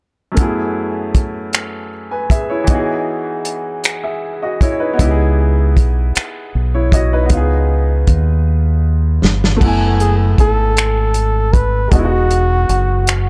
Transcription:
0.32 2.62 F#2 medium
0.32 2.63 A3 medium
0.37 2.65 B3 medium
0.37 1.90 E4 medium
0.37 kick medium
0.37 closed hi-hat medium
0.43 1.91 G#4 medium
1.14 kick medium
1.14 closed hi-hat soft
1.53 finger snap medium
1.53 closed hi-hat medium
2.11 2.30 B4 soft
2.11 2.29 G#5 soft
2.30 2.49 G#4 soft
2.30 2.49 E5 medium
2.30 kick medium
2.30 closed hi-hat medium
2.50 2.87 E4 soft
2.50 2.86 C#5 medium
2.64 4.93 E3 medium
2.64 4.92 B3 medium
2.64 kick medium
2.64 closed hi-hat medium
2.70 3.82 D#4 medium
2.70 3.84 F#4 medium
2.75 3.85 G#4 medium
3.45 closed hi-hat medium
3.84 finger snap medium
3.84 closed hi-hat medium
4.04 4.40 G#4 soft
4.04 4.40 E5 soft
4.42 4.61 F#4 soft
4.42 4.60 D#5 medium
4.61 4.80 E4 medium
4.61 4.80 C#5 medium
4.61 kick medium
4.61 closed hi-hat medium
4.80 4.95 D#4 soft
4.80 5.17 B4 medium
4.93 7.23 B3 medium
4.93 6.49 D#4 medium
4.99 5.77 C#2 medium
4.99 6.51 E4 medium
4.99 kick medium
4.99 closed hi-hat medium
5.05 5.09 G4 medium
5.11 6.56 G#4 medium
5.77 6.12 B1 medium
5.77 kick medium
5.77 closed hi-hat medium
6.15 finger snap medium
6.15 muted fingered electric bass stroke soft
6.15 closed hi-hat medium
6.55 7.31 B1 medium
6.75 6.92 E4 soft
6.75 6.92 C#5 medium
6.92 7.11 F#4 soft
6.92 7.11 D#5 medium
6.92 kick medium
6.92 closed hi-hat medium
7.13 7.29 D#4 soft
7.13 7.49 B4 medium
7.26 9.55 B3 medium
7.26 closed hi-hat medium
7.30 8.04 C#2 medium
7.30 9.57 D#4 medium
7.30 9.59 F4 medium
7.30 kick medium
7.37 9.60 G#4 medium
8.07 9.19 D#2 medium
8.07 kick medium
8.07 closed hi-hat soft
9.24 9.58 G1 medium
9.24 snare medium
9.44 snare medium
9.57 11.86 A3 medium
9.57 11.87 B3 medium
9.61 10.34 F#1 medium
9.61 11.89 E4 medium
9.61 kick medium
9.61 crash medium
9.68 11.91 G#5 medium
10.00 10.16 G#4 medium
10.00 closed hi-hat soft
10.38 11.88 G#1 medium
10.38 11.54 A4 medium
10.38 kick medium
10.38 closed hi-hat soft
10.77 finger snap loud
10.77 closed hi-hat medium
11.14 closed hi-hat soft
11.53 11.93 B4 medium
11.53 kick medium
11.53 closed hi-hat soft
11.87 13.29 G#3 medium
11.87 13.29 B3 medium
11.87 13.29 F#4 medium
11.91 12.65 E1 loud
11.91 13.29 D#4 medium
11.91 kick loud
11.91 closed hi-hat medium
11.99 12.02 E4 soft
12.05 13.29 F#4 medium
12.30 closed hi-hat soft
12.69 13.29 F#1 medium
12.69 closed hi-hat soft
13.07 finger snap loud
13.07 closed hi-hat medium

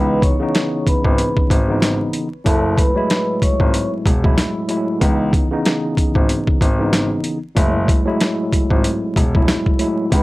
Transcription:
0.00 0.19 C#2 loud
0.00 0.36 C#3 medium
0.00 0.36 E3 medium
0.00 0.37 B3 medium
0.00 0.37 D#4 loud
0.00 0.19 B4 medium
0.00 0.20 B5 medium
0.22 0.82 C#5 medium
0.22 0.83 C#6 medium
0.22 kick loud
0.22 closed hi-hat medium
0.40 1.56 C#3 loud
0.40 1.57 E3 medium
0.40 1.57 B3 medium
0.40 1.58 D#4 loud
0.55 snare loud
0.55 closed hi-hat medium
0.87 1.34 B4 medium
0.87 1.34 B5 medium
0.87 kick medium
0.87 closed hi-hat medium
1.04 1.17 G#1 medium
1.04 kick medium
1.18 closed hi-hat medium
1.37 kick medium
1.50 1.95 G#1 medium
1.50 kick medium
1.50 closed hi-hat medium
1.68 2.26 C#3 medium
1.68 2.27 E3 medium
1.68 2.27 B3 medium
1.68 2.28 D#4 medium
1.82 snare loud
1.82 closed hi-hat loud
2.13 closed hi-hat medium
2.44 2.74 F#1 loud
2.44 2.91 A2 loud
2.44 2.92 F#3 medium
2.44 2.92 A3 medium
2.44 2.93 E4 loud
2.44 2.74 A4 loud
2.44 2.75 A5 medium
2.44 kick loud
2.44 closed hi-hat loud
2.77 3.38 B4 medium
2.77 3.38 B5 medium
2.77 kick loud
2.77 closed hi-hat medium
2.94 4.11 A2 medium
2.94 4.12 F#3 medium
2.94 4.12 G#3 medium
2.94 4.13 E4 loud
3.10 snare loud
3.10 closed hi-hat medium
3.42 3.89 C#5 medium
3.42 3.90 C#6 medium
3.42 kick medium
3.42 closed hi-hat medium
3.60 3.72 G#1 medium
3.60 kick medium
3.74 closed hi-hat medium
4.06 4.34 E1 medium
4.06 kick medium
4.06 closed hi-hat medium
4.23 4.66 A2 medium
4.23 4.66 F#3 medium
4.23 4.67 G#3 medium
4.23 4.67 E4 loud
4.23 kick medium
4.38 snare loud
4.38 closed hi-hat loud
4.68 4.98 A2 medium
4.68 4.99 F#3 medium
4.68 4.99 G#3 medium
4.68 5.00 E4 medium
4.68 closed hi-hat medium
5.00 5.30 C#2 loud
5.00 5.46 C#3 medium
5.00 5.47 E3 medium
5.00 5.47 B3 medium
5.00 5.48 D#4 loud
5.00 kick loud
5.00 closed hi-hat loud
5.33 kick loud
5.33 closed hi-hat medium
5.51 6.67 C#3 loud
5.51 6.67 E3 medium
5.51 6.68 B3 medium
5.51 6.68 D#4 loud
5.65 snare loud
5.65 closed hi-hat medium
5.97 kick medium
5.97 closed hi-hat medium
6.15 6.27 G#1 medium
6.15 kick medium
6.29 closed hi-hat medium
6.47 kick medium
6.61 7.06 G#1 loud
6.61 kick medium
6.61 closed hi-hat medium
6.78 7.37 C#3 medium
6.78 7.37 E3 medium
6.78 7.38 B3 medium
6.78 7.38 D#4 medium
6.93 snare loud
6.93 closed hi-hat loud
7.24 closed hi-hat medium
7.55 7.85 F#1 loud
7.55 8.02 A2 loud
7.55 8.02 F#3 medium
7.55 8.03 G#3 medium
7.55 8.03 E4 loud
7.55 kick loud
7.55 closed hi-hat loud
7.88 kick loud
7.88 closed hi-hat medium
8.05 9.22 A2 loud
8.05 9.22 F#3 medium
8.05 9.23 G#3 medium
8.05 9.23 E4 loud
8.20 snare loud
8.20 closed hi-hat medium
8.53 kick medium
8.53 closed hi-hat medium
8.70 8.83 G#1 medium
8.70 kick medium
8.84 closed hi-hat medium
9.16 9.45 E1 medium
9.16 kick medium
9.16 closed hi-hat medium
9.34 9.76 A2 medium
9.34 9.77 F#3 medium
9.34 9.77 G#3 medium
9.34 9.78 E4 loud
9.34 kick medium
9.48 snare loud
9.48 closed hi-hat loud
9.66 kick medium
9.78 10.09 A2 medium
9.78 10.09 F#3 medium
9.78 10.10 G#3 medium
9.78 10.10 E4 medium
9.78 closed hi-hat medium
10.10 10.23 C#2 medium
10.10 10.23 C#3 medium
10.10 10.23 E3 medium
10.10 10.23 B3 medium
10.10 10.23 D#4 loud
10.10 10.23 B4 medium
10.10 10.23 B5 medium
10.10 kick loud
10.10 closed hi-hat loud

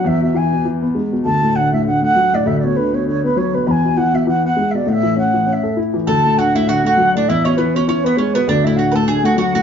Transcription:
0.04 1.21 E2 medium
0.04 0.23 E5 loud
0.22 0.34 B2 medium
0.22 0.38 E5 medium
0.34 0.51 E3 medium
0.34 0.66 G#5 medium
0.53 0.65 B2 soft
0.65 0.82 E3 soft
0.82 0.95 B3 medium
0.95 1.12 G#3 soft
1.12 1.25 B2 soft
1.25 2.42 D2 medium
1.25 1.57 A5 loud
1.42 1.55 A2 soft
1.55 1.72 D3 soft
1.55 1.72 F#5 medium
1.72 1.85 A2 soft
1.72 1.85 E5 medium
1.85 2.02 D3 soft
1.85 2.02 F#5 medium
2.01 2.15 A3 soft
2.01 2.36 F#5 loud
2.15 2.32 F#3 soft
2.33 2.46 A2 medium
2.33 2.48 D5 medium
2.46 3.63 D2 medium
2.46 2.59 E5 medium
2.59 2.65 D5 medium
2.63 2.76 B2 soft
2.63 2.78 C#5 medium
2.76 2.93 D3 medium
2.76 2.96 B4 medium
2.93 3.05 B2 soft
2.93 3.07 C#5 medium
3.06 3.23 D3 soft
3.06 3.23 C#5 medium
3.23 3.36 B3 medium
3.23 3.39 B4 medium
3.36 3.53 F#3 medium
3.36 3.56 C#5 medium
3.54 3.66 B2 soft
3.54 3.69 B4 medium
3.67 4.84 E2 medium
3.67 3.72 B5 medium
3.71 3.99 G#5 medium
3.85 3.97 B2 medium
3.97 4.14 E3 soft
3.97 4.16 F#5 medium
4.13 4.26 B2 soft
4.13 4.27 E5 medium
4.27 4.44 E3 medium
4.27 4.44 F#5 medium
4.44 4.57 B3 soft
4.44 4.73 F#5 medium
4.56 4.73 G#3 medium
4.71 4.87 B2 soft
4.71 4.77 E5 medium
4.75 4.90 D5 medium
4.86 6.04 A2 medium
4.86 4.93 F#5 medium
4.92 5.18 E5 medium
5.03 5.16 E3 soft
5.16 5.33 C#4 soft
5.16 5.49 F#5 medium
5.34 5.47 E3 soft
5.46 5.64 C#4 soft
5.46 5.54 F#5 medium
5.53 5.78 E5 medium
5.63 5.76 A4 soft
5.77 5.94 E4 medium
5.94 6.07 E3 medium
6.07 7.24 D2 medium
6.07 6.35 A4 medium
6.07 6.40 A5 loud
6.25 6.37 A2 soft
6.38 6.54 D3 medium
6.38 6.55 F#4 medium
6.38 6.57 F#5 loud
6.55 6.67 A2 soft
6.55 6.67 E4 medium
6.55 6.70 E5 medium
6.67 6.84 D3 medium
6.67 6.84 F#4 medium
6.67 6.85 F#5 medium
6.84 6.97 A3 medium
6.84 7.14 F#4 medium
6.84 7.13 F#5 loud
6.97 7.14 F#3 soft
7.15 7.27 A2 medium
7.15 7.29 D4 medium
7.15 7.30 D5 medium
7.28 8.44 E2 medium
7.28 7.45 E4 medium
7.28 7.46 E5 loud
7.45 7.58 B2 soft
7.45 7.57 C#4 medium
7.45 7.58 C#5 medium
7.57 7.75 E3 medium
7.57 7.75 B3 medium
7.57 7.76 B4 medium
7.75 7.87 B2 soft
7.75 7.87 C#4 medium
7.75 7.86 C#5 medium
7.87 8.04 E3 medium
7.87 8.06 C#4 medium
7.87 8.05 C#5 medium
8.04 8.17 B3 medium
8.04 8.18 B4 medium
8.17 8.34 G#3 medium
8.17 8.34 C#4 medium
8.17 8.36 C#5 medium
8.34 8.47 B2 medium
8.34 8.47 B3 medium
8.34 8.47 B4 medium
8.47 9.62 D2 medium
8.47 8.64 D4 medium
8.47 8.66 D5 medium
8.64 8.77 A2 medium
8.64 8.78 E4 medium
8.64 8.78 E5 medium
8.76 8.93 D3 soft
8.76 8.91 F#4 medium
8.76 8.96 F#5 medium
8.92 9.07 A2 soft
8.92 9.08 A4 medium
8.92 8.95 B4 medium
8.92 9.07 A5 medium
9.07 9.24 D3 medium
9.07 9.23 G#4 medium
9.07 9.26 G#5 medium
9.24 9.36 A3 medium
9.24 9.37 F#4 medium
9.24 9.37 F#5 medium
9.37 9.53 F#3 soft
9.37 9.54 F#4 medium
9.37 9.62 F#5 medium
9.54 9.62 A2 medium
9.54 9.62 F#4 medium

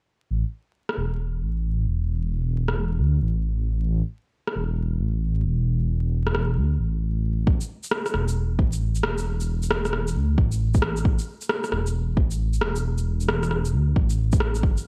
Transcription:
0.31 0.44 A1 medium
0.89 cross-stick soft
0.97 1.44 E1 medium
1.42 1.86 A1 loud
1.87 2.76 E1 medium
2.68 cross-stick soft
2.77 3.00 E1 medium
2.99 3.20 D2 medium
3.22 3.88 A1 medium
3.88 4.02 A1 medium
4.47 cross-stick soft
4.56 5.02 E1 medium
5.00 5.44 A1 loud
5.45 6.33 E1 medium
6.27 cross-stick soft
6.35 6.59 E1 medium
6.35 cross-stick medium
6.57 6.78 D2 medium
6.79 7.46 A1 loud
7.47 7.60 A1 medium
7.47 kick loud
7.61 shaker soft
7.83 shaker medium
7.91 cross-stick loud
8.06 cross-stick medium
8.06 shaker soft
8.14 8.61 E1 medium
8.14 cross-stick medium
8.28 shaker medium
8.59 9.03 A1 loud
8.59 kick loud
8.73 shaker medium
8.95 shaker soft
9.03 9.92 E1 medium
9.03 cross-stick loud
9.18 shaker medium
9.40 shaker soft
9.63 shaker medium
9.71 cross-stick loud
9.85 cross-stick soft
9.85 shaker soft
9.93 10.17 E1 medium
9.93 cross-stick medium
10.08 shaker medium
10.16 10.37 D2 medium
10.38 11.04 A1 medium
10.38 kick loud
10.52 shaker medium
10.74 kick loud
10.74 shaker soft
10.82 cross-stick loud
10.97 shaker medium
11.05 11.18 A1 loud
11.05 kick loud
11.19 shaker soft
11.41 shaker medium
11.49 cross-stick loud
11.64 cross-stick soft
11.64 shaker soft
11.72 12.18 E1 medium
11.72 cross-stick medium
11.87 shaker medium
12.17 12.61 A1 loud
12.17 kick loud
12.31 shaker medium
12.53 shaker soft
12.61 13.50 E1 medium
12.61 cross-stick loud
12.76 shaker medium
12.98 shaker soft
13.21 shaker medium
13.28 cross-stick loud
13.43 cross-stick soft
13.43 shaker soft
13.50 13.74 E1 medium
13.50 cross-stick medium
13.65 shaker soft
13.73 13.94 D2 medium
13.96 14.62 A1 loud
13.96 kick loud
14.10 shaker medium
14.32 kick loud
14.32 shaker soft
14.40 cross-stick loud
14.55 shaker medium
14.63 14.76 G1 medium
14.63 kick loud
14.77 shaker soft

